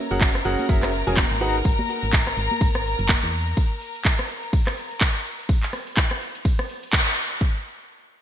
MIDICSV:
0, 0, Header, 1, 5, 480
1, 0, Start_track
1, 0, Tempo, 480000
1, 1651, Time_signature, 4, 2, 24, 8
1, 8218, End_track
2, 0, Start_track
2, 0, Title_t, "Violin section"
2, 0, Program_c, 0, 48
2, 0, Note_on_c, 0, 70, 89
2, 0, Note_on_c, 0, 82, 90
2, 5502, Note_off_c, 0, 70, 0
2, 5502, Note_off_c, 0, 82, 0
2, 8218, End_track
3, 0, Start_track
3, 0, Title_t, "Grand piano"
3, 0, Program_c, 1, 0
3, 110, Note_on_c, 1, 61, 74
3, 110, Note_on_c, 1, 66, 69
3, 110, Note_on_c, 1, 68, 69
3, 110, Note_on_c, 1, 70, 70
3, 110, Note_on_c, 1, 78, 81
3, 292, Note_off_c, 1, 61, 0
3, 292, Note_off_c, 1, 66, 0
3, 292, Note_off_c, 1, 68, 0
3, 292, Note_off_c, 1, 70, 0
3, 292, Note_off_c, 1, 78, 0
3, 450, Note_on_c, 1, 61, 88
3, 450, Note_on_c, 1, 66, 82
3, 450, Note_on_c, 1, 68, 85
3, 450, Note_on_c, 1, 70, 82
3, 450, Note_on_c, 1, 78, 101
3, 649, Note_off_c, 1, 61, 0
3, 649, Note_off_c, 1, 66, 0
3, 649, Note_off_c, 1, 68, 0
3, 649, Note_off_c, 1, 70, 0
3, 649, Note_off_c, 1, 78, 0
3, 691, Note_on_c, 1, 61, 90
3, 691, Note_on_c, 1, 66, 86
3, 691, Note_on_c, 1, 68, 82
3, 691, Note_on_c, 1, 70, 86
3, 691, Note_on_c, 1, 76, 101
3, 889, Note_off_c, 1, 61, 0
3, 889, Note_off_c, 1, 66, 0
3, 889, Note_off_c, 1, 68, 0
3, 889, Note_off_c, 1, 70, 0
3, 889, Note_off_c, 1, 76, 0
3, 1071, Note_on_c, 1, 61, 82
3, 1071, Note_on_c, 1, 66, 77
3, 1071, Note_on_c, 1, 68, 76
3, 1071, Note_on_c, 1, 70, 80
3, 1071, Note_on_c, 1, 80, 94
3, 1170, Note_off_c, 1, 61, 0
3, 1170, Note_off_c, 1, 66, 0
3, 1170, Note_off_c, 1, 68, 0
3, 1170, Note_off_c, 1, 70, 0
3, 1170, Note_off_c, 1, 80, 0
3, 1411, Note_on_c, 1, 63, 91
3, 1411, Note_on_c, 1, 66, 85
3, 1411, Note_on_c, 1, 68, 89
3, 1411, Note_on_c, 1, 71, 87
3, 1411, Note_on_c, 1, 78, 105
3, 1549, Note_off_c, 1, 63, 0
3, 1549, Note_off_c, 1, 66, 0
3, 1549, Note_off_c, 1, 68, 0
3, 1549, Note_off_c, 1, 71, 0
3, 1549, Note_off_c, 1, 78, 0
3, 8218, End_track
4, 0, Start_track
4, 0, Title_t, "FM bass"
4, 0, Program_c, 2, 39
4, 111, Note_on_c, 2, 30, 80
4, 424, Note_off_c, 2, 30, 0
4, 451, Note_on_c, 2, 30, 92
4, 567, Note_off_c, 2, 30, 0
4, 691, Note_on_c, 2, 30, 101
4, 1033, Note_off_c, 2, 30, 0
4, 1071, Note_on_c, 2, 28, 100
4, 1264, Note_off_c, 2, 28, 0
4, 1311, Note_on_c, 2, 32, 91
4, 1624, Note_off_c, 2, 32, 0
4, 1651, Note_on_c, 2, 32, 103
4, 1767, Note_off_c, 2, 32, 0
4, 2030, Note_on_c, 2, 32, 80
4, 2344, Note_off_c, 2, 32, 0
4, 2371, Note_on_c, 2, 32, 90
4, 2487, Note_off_c, 2, 32, 0
4, 2611, Note_on_c, 2, 32, 101
4, 2953, Note_off_c, 2, 32, 0
4, 2990, Note_on_c, 2, 30, 100
4, 3183, Note_off_c, 2, 30, 0
4, 3231, Note_on_c, 2, 40, 90
4, 3544, Note_off_c, 2, 40, 0
4, 8218, End_track
5, 0, Start_track
5, 0, Title_t, "Drums"
5, 110, Note_on_c, 9, 54, 54
5, 111, Note_on_c, 9, 42, 65
5, 116, Note_off_c, 9, 54, 0
5, 116, Note_on_c, 9, 54, 46
5, 209, Note_on_c, 9, 39, 114
5, 211, Note_off_c, 9, 42, 0
5, 211, Note_on_c, 9, 36, 124
5, 211, Note_on_c, 9, 42, 52
5, 211, Note_on_c, 9, 51, 72
5, 212, Note_off_c, 9, 54, 0
5, 212, Note_on_c, 9, 54, 43
5, 216, Note_off_c, 9, 54, 0
5, 216, Note_on_c, 9, 54, 35
5, 309, Note_off_c, 9, 39, 0
5, 311, Note_off_c, 9, 36, 0
5, 311, Note_off_c, 9, 42, 0
5, 311, Note_off_c, 9, 51, 0
5, 316, Note_off_c, 9, 54, 0
5, 351, Note_on_c, 9, 37, 70
5, 449, Note_on_c, 9, 54, 100
5, 451, Note_off_c, 9, 37, 0
5, 451, Note_on_c, 9, 46, 106
5, 456, Note_off_c, 9, 54, 0
5, 456, Note_on_c, 9, 54, 78
5, 551, Note_off_c, 9, 46, 0
5, 556, Note_off_c, 9, 54, 0
5, 588, Note_on_c, 9, 54, 51
5, 591, Note_on_c, 9, 42, 67
5, 592, Note_on_c, 9, 63, 62
5, 596, Note_off_c, 9, 54, 0
5, 596, Note_on_c, 9, 54, 48
5, 691, Note_off_c, 9, 42, 0
5, 691, Note_on_c, 9, 36, 125
5, 691, Note_on_c, 9, 42, 49
5, 691, Note_on_c, 9, 51, 67
5, 692, Note_off_c, 9, 63, 0
5, 696, Note_off_c, 9, 54, 0
5, 696, Note_on_c, 9, 54, 33
5, 791, Note_off_c, 9, 36, 0
5, 791, Note_off_c, 9, 42, 0
5, 791, Note_off_c, 9, 51, 0
5, 796, Note_off_c, 9, 54, 0
5, 828, Note_on_c, 9, 39, 36
5, 831, Note_on_c, 9, 37, 82
5, 928, Note_off_c, 9, 39, 0
5, 930, Note_on_c, 9, 54, 95
5, 931, Note_off_c, 9, 37, 0
5, 931, Note_on_c, 9, 46, 110
5, 936, Note_off_c, 9, 54, 0
5, 936, Note_on_c, 9, 54, 81
5, 1031, Note_off_c, 9, 46, 0
5, 1036, Note_off_c, 9, 54, 0
5, 1071, Note_on_c, 9, 42, 64
5, 1071, Note_on_c, 9, 54, 59
5, 1076, Note_off_c, 9, 54, 0
5, 1076, Note_on_c, 9, 54, 45
5, 1162, Note_off_c, 9, 54, 0
5, 1162, Note_on_c, 9, 54, 38
5, 1168, Note_on_c, 9, 39, 124
5, 1168, Note_on_c, 9, 63, 95
5, 1171, Note_off_c, 9, 42, 0
5, 1171, Note_on_c, 9, 36, 121
5, 1171, Note_on_c, 9, 42, 55
5, 1171, Note_on_c, 9, 51, 73
5, 1176, Note_off_c, 9, 54, 0
5, 1176, Note_on_c, 9, 54, 36
5, 1268, Note_off_c, 9, 39, 0
5, 1268, Note_off_c, 9, 63, 0
5, 1271, Note_off_c, 9, 36, 0
5, 1271, Note_off_c, 9, 42, 0
5, 1271, Note_off_c, 9, 51, 0
5, 1276, Note_off_c, 9, 54, 0
5, 1411, Note_on_c, 9, 46, 107
5, 1411, Note_on_c, 9, 54, 92
5, 1416, Note_off_c, 9, 54, 0
5, 1416, Note_on_c, 9, 54, 81
5, 1511, Note_off_c, 9, 46, 0
5, 1516, Note_off_c, 9, 54, 0
5, 1551, Note_on_c, 9, 42, 63
5, 1551, Note_on_c, 9, 54, 52
5, 1556, Note_off_c, 9, 54, 0
5, 1556, Note_on_c, 9, 54, 47
5, 1651, Note_off_c, 9, 42, 0
5, 1651, Note_on_c, 9, 36, 119
5, 1651, Note_on_c, 9, 42, 55
5, 1651, Note_on_c, 9, 51, 74
5, 1656, Note_off_c, 9, 54, 0
5, 1656, Note_on_c, 9, 54, 36
5, 1751, Note_off_c, 9, 36, 0
5, 1751, Note_off_c, 9, 42, 0
5, 1751, Note_off_c, 9, 51, 0
5, 1756, Note_off_c, 9, 54, 0
5, 1790, Note_on_c, 9, 63, 82
5, 1890, Note_off_c, 9, 63, 0
5, 1890, Note_on_c, 9, 54, 89
5, 1891, Note_on_c, 9, 46, 111
5, 1896, Note_off_c, 9, 54, 0
5, 1896, Note_on_c, 9, 54, 90
5, 1991, Note_off_c, 9, 46, 0
5, 1996, Note_off_c, 9, 54, 0
5, 2031, Note_on_c, 9, 42, 65
5, 2032, Note_on_c, 9, 54, 57
5, 2036, Note_off_c, 9, 54, 0
5, 2036, Note_on_c, 9, 54, 47
5, 2129, Note_on_c, 9, 39, 120
5, 2131, Note_off_c, 9, 42, 0
5, 2131, Note_on_c, 9, 36, 117
5, 2131, Note_on_c, 9, 42, 55
5, 2131, Note_on_c, 9, 51, 75
5, 2136, Note_off_c, 9, 54, 0
5, 2136, Note_on_c, 9, 54, 35
5, 2229, Note_off_c, 9, 39, 0
5, 2231, Note_off_c, 9, 36, 0
5, 2231, Note_off_c, 9, 42, 0
5, 2231, Note_off_c, 9, 51, 0
5, 2236, Note_off_c, 9, 54, 0
5, 2271, Note_on_c, 9, 37, 67
5, 2371, Note_off_c, 9, 37, 0
5, 2371, Note_on_c, 9, 46, 100
5, 2376, Note_on_c, 9, 54, 96
5, 2471, Note_off_c, 9, 46, 0
5, 2476, Note_off_c, 9, 54, 0
5, 2511, Note_on_c, 9, 42, 68
5, 2513, Note_on_c, 9, 63, 66
5, 2514, Note_on_c, 9, 54, 50
5, 2516, Note_off_c, 9, 54, 0
5, 2516, Note_on_c, 9, 54, 48
5, 2611, Note_off_c, 9, 42, 0
5, 2611, Note_on_c, 9, 36, 121
5, 2611, Note_on_c, 9, 42, 52
5, 2611, Note_on_c, 9, 51, 70
5, 2613, Note_off_c, 9, 63, 0
5, 2616, Note_off_c, 9, 54, 0
5, 2616, Note_on_c, 9, 54, 34
5, 2711, Note_off_c, 9, 36, 0
5, 2711, Note_off_c, 9, 42, 0
5, 2711, Note_off_c, 9, 51, 0
5, 2716, Note_off_c, 9, 54, 0
5, 2751, Note_on_c, 9, 37, 81
5, 2850, Note_on_c, 9, 54, 102
5, 2851, Note_off_c, 9, 37, 0
5, 2851, Note_on_c, 9, 46, 104
5, 2856, Note_off_c, 9, 54, 0
5, 2856, Note_on_c, 9, 54, 83
5, 2951, Note_off_c, 9, 46, 0
5, 2956, Note_off_c, 9, 54, 0
5, 2991, Note_on_c, 9, 42, 66
5, 2992, Note_on_c, 9, 54, 53
5, 2996, Note_off_c, 9, 54, 0
5, 2996, Note_on_c, 9, 54, 46
5, 3089, Note_on_c, 9, 39, 122
5, 3091, Note_off_c, 9, 42, 0
5, 3091, Note_on_c, 9, 36, 115
5, 3091, Note_on_c, 9, 42, 55
5, 3091, Note_on_c, 9, 51, 74
5, 3094, Note_off_c, 9, 54, 0
5, 3094, Note_on_c, 9, 54, 42
5, 3094, Note_on_c, 9, 63, 90
5, 3096, Note_off_c, 9, 54, 0
5, 3096, Note_on_c, 9, 54, 37
5, 3189, Note_off_c, 9, 39, 0
5, 3191, Note_off_c, 9, 36, 0
5, 3191, Note_off_c, 9, 42, 0
5, 3191, Note_off_c, 9, 51, 0
5, 3194, Note_off_c, 9, 63, 0
5, 3196, Note_off_c, 9, 54, 0
5, 3331, Note_on_c, 9, 46, 102
5, 3336, Note_on_c, 9, 54, 81
5, 3338, Note_off_c, 9, 54, 0
5, 3338, Note_on_c, 9, 54, 93
5, 3431, Note_off_c, 9, 46, 0
5, 3438, Note_off_c, 9, 54, 0
5, 3471, Note_on_c, 9, 42, 66
5, 3474, Note_on_c, 9, 54, 54
5, 3476, Note_off_c, 9, 54, 0
5, 3476, Note_on_c, 9, 54, 46
5, 3571, Note_off_c, 9, 42, 0
5, 3571, Note_on_c, 9, 36, 119
5, 3571, Note_on_c, 9, 42, 58
5, 3571, Note_on_c, 9, 51, 70
5, 3576, Note_off_c, 9, 54, 0
5, 3576, Note_on_c, 9, 54, 35
5, 3671, Note_off_c, 9, 36, 0
5, 3671, Note_off_c, 9, 42, 0
5, 3671, Note_off_c, 9, 51, 0
5, 3676, Note_off_c, 9, 54, 0
5, 3811, Note_on_c, 9, 46, 108
5, 3816, Note_on_c, 9, 54, 91
5, 3911, Note_off_c, 9, 46, 0
5, 3916, Note_off_c, 9, 54, 0
5, 3951, Note_on_c, 9, 42, 69
5, 3956, Note_on_c, 9, 54, 49
5, 4048, Note_on_c, 9, 39, 123
5, 4051, Note_off_c, 9, 42, 0
5, 4051, Note_on_c, 9, 36, 114
5, 4051, Note_on_c, 9, 42, 56
5, 4051, Note_on_c, 9, 51, 74
5, 4056, Note_off_c, 9, 54, 0
5, 4056, Note_on_c, 9, 54, 36
5, 4148, Note_off_c, 9, 39, 0
5, 4151, Note_off_c, 9, 36, 0
5, 4151, Note_off_c, 9, 42, 0
5, 4151, Note_off_c, 9, 51, 0
5, 4156, Note_off_c, 9, 54, 0
5, 4190, Note_on_c, 9, 37, 66
5, 4290, Note_off_c, 9, 37, 0
5, 4291, Note_on_c, 9, 46, 105
5, 4296, Note_on_c, 9, 54, 87
5, 4391, Note_off_c, 9, 46, 0
5, 4396, Note_off_c, 9, 54, 0
5, 4430, Note_on_c, 9, 42, 70
5, 4436, Note_on_c, 9, 54, 49
5, 4530, Note_off_c, 9, 42, 0
5, 4531, Note_on_c, 9, 36, 120
5, 4531, Note_on_c, 9, 42, 53
5, 4531, Note_on_c, 9, 51, 69
5, 4536, Note_off_c, 9, 54, 0
5, 4536, Note_on_c, 9, 54, 34
5, 4631, Note_off_c, 9, 36, 0
5, 4631, Note_off_c, 9, 42, 0
5, 4631, Note_off_c, 9, 51, 0
5, 4636, Note_off_c, 9, 54, 0
5, 4668, Note_on_c, 9, 39, 37
5, 4670, Note_on_c, 9, 37, 75
5, 4768, Note_off_c, 9, 39, 0
5, 4770, Note_off_c, 9, 37, 0
5, 4771, Note_on_c, 9, 46, 103
5, 4776, Note_on_c, 9, 54, 83
5, 4871, Note_off_c, 9, 46, 0
5, 4876, Note_off_c, 9, 54, 0
5, 4910, Note_on_c, 9, 42, 70
5, 4916, Note_on_c, 9, 54, 47
5, 5008, Note_on_c, 9, 39, 121
5, 5010, Note_off_c, 9, 42, 0
5, 5011, Note_on_c, 9, 36, 116
5, 5011, Note_on_c, 9, 42, 58
5, 5011, Note_on_c, 9, 51, 73
5, 5015, Note_off_c, 9, 54, 0
5, 5016, Note_on_c, 9, 54, 38
5, 5108, Note_off_c, 9, 39, 0
5, 5111, Note_off_c, 9, 36, 0
5, 5111, Note_off_c, 9, 42, 0
5, 5111, Note_off_c, 9, 51, 0
5, 5116, Note_off_c, 9, 54, 0
5, 5251, Note_on_c, 9, 46, 99
5, 5256, Note_on_c, 9, 54, 83
5, 5351, Note_off_c, 9, 46, 0
5, 5356, Note_off_c, 9, 54, 0
5, 5391, Note_on_c, 9, 42, 68
5, 5396, Note_on_c, 9, 54, 48
5, 5491, Note_off_c, 9, 42, 0
5, 5491, Note_on_c, 9, 36, 121
5, 5491, Note_on_c, 9, 42, 56
5, 5491, Note_on_c, 9, 51, 68
5, 5496, Note_off_c, 9, 54, 0
5, 5496, Note_on_c, 9, 54, 35
5, 5591, Note_off_c, 9, 36, 0
5, 5591, Note_off_c, 9, 42, 0
5, 5591, Note_off_c, 9, 51, 0
5, 5596, Note_off_c, 9, 54, 0
5, 5628, Note_on_c, 9, 39, 37
5, 5728, Note_off_c, 9, 39, 0
5, 5731, Note_on_c, 9, 37, 63
5, 5731, Note_on_c, 9, 46, 107
5, 5736, Note_on_c, 9, 54, 86
5, 5831, Note_off_c, 9, 37, 0
5, 5831, Note_off_c, 9, 46, 0
5, 5836, Note_off_c, 9, 54, 0
5, 5870, Note_on_c, 9, 42, 70
5, 5876, Note_on_c, 9, 54, 47
5, 5969, Note_on_c, 9, 39, 125
5, 5970, Note_off_c, 9, 42, 0
5, 5971, Note_on_c, 9, 36, 117
5, 5971, Note_on_c, 9, 42, 56
5, 5971, Note_on_c, 9, 51, 66
5, 5976, Note_off_c, 9, 54, 0
5, 5976, Note_on_c, 9, 54, 37
5, 6069, Note_off_c, 9, 39, 0
5, 6071, Note_off_c, 9, 36, 0
5, 6071, Note_off_c, 9, 42, 0
5, 6071, Note_off_c, 9, 51, 0
5, 6076, Note_off_c, 9, 54, 0
5, 6111, Note_on_c, 9, 37, 65
5, 6211, Note_off_c, 9, 37, 0
5, 6211, Note_on_c, 9, 46, 105
5, 6216, Note_on_c, 9, 54, 85
5, 6311, Note_off_c, 9, 46, 0
5, 6316, Note_off_c, 9, 54, 0
5, 6350, Note_on_c, 9, 42, 71
5, 6356, Note_on_c, 9, 54, 46
5, 6450, Note_off_c, 9, 42, 0
5, 6450, Note_on_c, 9, 42, 55
5, 6450, Note_on_c, 9, 51, 66
5, 6451, Note_on_c, 9, 36, 119
5, 6456, Note_off_c, 9, 54, 0
5, 6456, Note_on_c, 9, 54, 35
5, 6550, Note_off_c, 9, 42, 0
5, 6550, Note_off_c, 9, 51, 0
5, 6551, Note_off_c, 9, 36, 0
5, 6556, Note_off_c, 9, 54, 0
5, 6591, Note_on_c, 9, 37, 75
5, 6691, Note_off_c, 9, 37, 0
5, 6691, Note_on_c, 9, 46, 106
5, 6696, Note_on_c, 9, 54, 82
5, 6791, Note_off_c, 9, 46, 0
5, 6796, Note_off_c, 9, 54, 0
5, 6831, Note_on_c, 9, 42, 70
5, 6836, Note_on_c, 9, 54, 47
5, 6929, Note_on_c, 9, 39, 127
5, 6931, Note_off_c, 9, 42, 0
5, 6931, Note_on_c, 9, 36, 118
5, 6931, Note_on_c, 9, 42, 61
5, 6931, Note_on_c, 9, 51, 70
5, 6936, Note_off_c, 9, 54, 0
5, 6936, Note_on_c, 9, 54, 36
5, 7029, Note_off_c, 9, 39, 0
5, 7031, Note_off_c, 9, 36, 0
5, 7031, Note_off_c, 9, 42, 0
5, 7031, Note_off_c, 9, 51, 0
5, 7036, Note_off_c, 9, 54, 0
5, 7171, Note_on_c, 9, 46, 106
5, 7176, Note_on_c, 9, 54, 82
5, 7271, Note_off_c, 9, 46, 0
5, 7276, Note_off_c, 9, 54, 0
5, 7311, Note_on_c, 9, 42, 70
5, 7316, Note_on_c, 9, 54, 47
5, 7411, Note_off_c, 9, 42, 0
5, 7411, Note_on_c, 9, 36, 109
5, 7416, Note_off_c, 9, 54, 0
5, 7511, Note_off_c, 9, 36, 0
5, 8218, End_track
0, 0, End_of_file